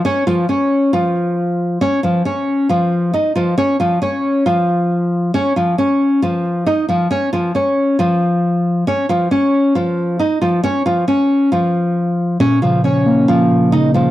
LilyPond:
<<
  \new Staff \with { instrumentName = "Nylon-string guitar" } { \time 4/4 \key des \major \tempo 4 = 136 <des' des''>8 <f f'>8 <des' des''>4 <f f'>2 | <des' des''>8 <f f'>8 <des' des''>4 <f f'>4 <ees' ees''>8 <f f'>8 | <des' des''>8 <f f'>8 <des' des''>4 <f f'>2 | <des' des''>8 <f f'>8 <des' des''>4 <f f'>4 <ees' ees''>8 <f f'>8 |
<des' des''>8 <f f'>8 <des' des''>4 <f f'>2 | <des' des''>8 <f f'>8 <des' des''>4 <f f'>4 <ees' ees''>8 <f f'>8 | <des' des''>8 <f f'>8 <des' des''>4 <f f'>2 | <des' des''>8 <f f'>8 <des' des''>4 <f f'>4 <ees' ees''>8 <f f'>8 | }
  \new Staff \with { instrumentName = "Synth keys" } { \clef bass \time 4/4 \key des \major r1 | r1 | r1 | r1 |
r1 | r1 | r1 | bes,8 des8 f8 bes8 des'8 bes,8 des8 f8 | }
>>